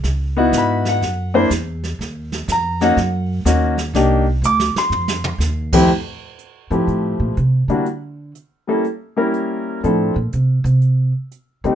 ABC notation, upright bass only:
X:1
M:4/4
L:1/8
Q:"Swing" 1/4=123
K:Fmix
V:1 name="Upright bass" clef=bass
_D,,2 _A,,2 _G,,2 _F,,2 | E,,2 F,,2 _G,,2 E,,2 | C,,2 D,, z F,,2 E,,2 | [K:F] z3 _A,, =A,, B,, C, D,- |
D,2 z6 | A,, B,, C, C,2 z2 D, |]